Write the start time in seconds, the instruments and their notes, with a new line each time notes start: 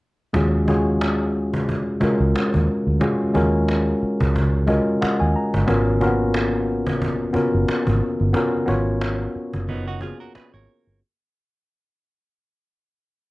0.33 fingered electric bass D#2, tine electric piano G#3 C#4 F4 F#4 G#4, cajon bass
0.67 tine electric piano G#3 C#4 F4 F#4 G#4, cajon bass
0.87 cajon slap
1.01 cajon slap
1.33 cajon slap
1.36 cajon slap
1.54 cajon bass
1.69 cajon bass
2.01 tine electric piano G#3 C#4 F4 F#4 A#4, muted fingered electric bass stroke, cajon bass
2.20 fingered electric bass C#2
2.36 cajon slap
2.54 fingered electric bass D#2, cajon bass
2.68 cajon slap
2.87 fingered electric bass D2, cajon slap
3.00 tine electric piano G#3 C#4 F4 F#4 G#4, cajon bass
3.34 fingered electric bass D#2, tine electric piano G#3 C#4 F4 F#4 A#4, cajon bass
3.53 cajon slap
3.68 cajon slap
3.99 cajon slap
4.02 muted fingered electric bass stroke, cajon slap
4.20 fingered electric bass C#2, cajon bass
4.35 cajon bass
4.67 tine electric piano G#3 C#4 F4 F#4 A#4 D#5, cajon bass
5.01 tine electric piano F#5, muted fingered electric bass stroke, cajon slap
5.20 fingered electric bass D#2, tine electric piano G#5
5.34 tine electric piano A#5, cajon slap
5.53 fingered electric bass G1, cajon bass, cajon slap
5.67 fingered electric bass G#1, tine electric piano B3 C#4 F4 F#4 A#4, cajon bass
6.00 tine electric piano A#3 C#4 F4 F#4 A#4, cajon bass
6.06 tine electric piano B3
6.20 cajon slap
6.34 cajon slap
6.66 cajon slap
6.68 cajon slap
6.87 cajon bass
7.02 cajon bass
7.33 tine electric piano B3 C#4 F4 F#4 A#4, muted fingered electric bass stroke, cajon bass
7.54 fingered electric bass F#1
7.69 cajon slap
7.87 fingered electric bass G#1, cajon bass
8.01 cajon slap
8.20 fingered electric bass G1, cajon slap
8.33 tine electric piano B3 C#4 F4 F#4 A#4, cajon bass
8.66 fingered electric bass G#1, tine electric piano B3 C#4 F4 F#4 C#5, cajon bass
8.87 cajon slap
9.01 cajon slap
9.33 cajon slap
9.35 muted fingered electric bass stroke, cajon slap
9.53 fingered electric bass F#1, cajon bass
9.68 clean electric guitar B3 D#4, cajon bass
9.87 clean electric guitar D#4 F#4
10.00 tine electric piano A#3 C#4 F4 F#4 G#4, clean electric guitar F4 G#4, cajon bass
10.07 tine electric piano B3
10.20 clean electric guitar F#4 A#4, cajon slap
10.35 clean electric guitar G#4 B4, muted fingered electric bass stroke, cajon slap
10.54 fingered electric bass G#1, clean electric guitar A#4 C#5
10.67 cajon slap
10.87 fingered electric bass G1, cajon slap